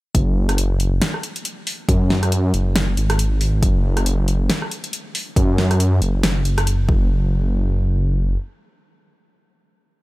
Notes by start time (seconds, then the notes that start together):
0.15 F#1, kick, closed hi-hat
0.49 cross-stick, closed hi-hat
0.58 closed hi-hat
0.80 closed hi-hat
1.02 snare, closed hi-hat
1.14 cross-stick
1.23 closed hi-hat
1.36 closed hi-hat
1.45 closed hi-hat
1.67 open hi-hat
1.89 F#2, kick, closed hi-hat
2.10 snare
2.23 cross-stick, closed hi-hat
2.32 closed hi-hat
2.54 F#1, closed hi-hat
2.76 snare, closed hi-hat
2.97 G#1, closed hi-hat
3.10 cross-stick, closed hi-hat
3.19 closed hi-hat
3.41 open hi-hat
3.63 F#1, kick, closed hi-hat
3.97 cross-stick, closed hi-hat
4.06 closed hi-hat
4.28 closed hi-hat
4.50 snare, closed hi-hat
4.62 cross-stick
4.71 closed hi-hat
4.84 closed hi-hat
4.93 closed hi-hat
5.15 open hi-hat
5.36 F#2, kick, closed hi-hat
5.58 snare
5.71 cross-stick, closed hi-hat
5.80 closed hi-hat
6.02 F#1, closed hi-hat
6.23 snare, closed hi-hat
6.45 closed hi-hat
6.58 cross-stick, closed hi-hat
6.67 closed hi-hat
6.89 F#1, kick